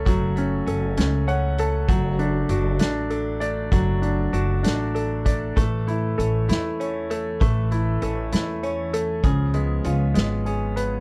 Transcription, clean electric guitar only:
X:1
M:6/8
L:1/8
Q:3/8=65
K:A
V:1 name="Clean electric guitar"
[A,CF] A, C A, C A, | [A,F] A, D A, D A, | [A,F] A, D A, D A, | [E,A] A, C A, C A, |
[E,A] A, C A, C A, | [^E,G] B, C B, C B, |]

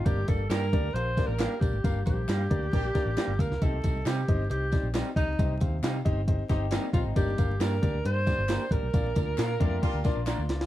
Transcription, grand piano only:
X:1
M:4/4
L:1/8
Q:1/4=135
K:Gm
V:1 name="Grand piano"
[B,DGBd] [B,DGBd] [B,DGBd] [B,DGBd] [B,DGBf] [B,DGBd] [B,DGBf] [B,DGBd] | [B,DGBf] [B,DGBc] [B,DGBf] [B,DGBd] [B,DGBd] [B,DGBd] [B,DGBd] [B,DGBf] | [CEGce] [CEGce] [CEGce] [CEGce] [CEGce] [CEGcd] [CEGcd] [CEGce] | [CEGce] [CEGcf] [CEGcf] [CEGce] [CEGce] [CEGce] [CEGce] [CEGce] |
[B,DGBd] [B,DGBf] [B,DGBd] [B,DGBd] [B,DGBd] [B,DGBd] [B,DGBd] [B,DGBd] | [B,DFBd] [B,DFBd] [B,DFBf] [B,DFBd] [B,DFBd] [B,DFBd] [B,DFBd] [B,DFBd] |]
V:2 name="Grand piano" clef=bass
G,,3 z4 z | G,,3 z4 z | C,3 z4 z | C,3 z4 z |
G,,3 z4 z | B,,3 z4 z |]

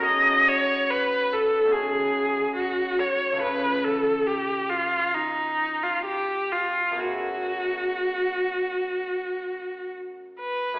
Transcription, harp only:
X:1
M:4/4
L:1/8
Q:1/4=68
K:F#dor
V:1 name="Harp"
[B,,,A,B,CFG]4 [B,,,A,CFG]4 | [C,,A,C^EA]8 | [F,,A,B,EG]8 |]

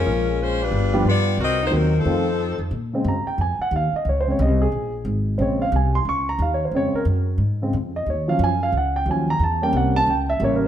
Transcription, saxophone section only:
X:1
M:4/4
L:1/8
Q:"Swing" 1/4=179
K:Bbm
V:1 name="Saxophone section"
[^G,DFB]2 [A,DFc] [=G,=DF_c]3 [=B,F=G=d]2 | [CGBe] [B,EGc] [G,CEB] [F,CE=A]4 z | z8 | z8 |
z8 | z8 | z8 | z8 |]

